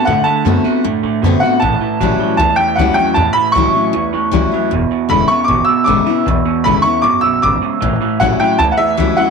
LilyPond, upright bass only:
\new Staff \with { instrumentName = "Upright bass" } { \clef bass \time 4/4 \key a \mixolydian \tempo 4 = 155 a,8 r8 fis,8 r8 fis,8 a,8 fis,8 r8 | a,,8 r8 a,,8 r8 cis,8 r8 cis,8 r8 | e,8 r8 cis,8 r8 cis,8 e,8 cis,8 r8 | e,,8 r8 e,,8 r8 gis,,8 r8 gis,,8 r8 |
b,,8 r8 gis,,8 r8 gis,,8 b,,8 gis,,8 r8 | a,,8 r8 a,,8 r8 cis,8 r8 cis,8 r8 | }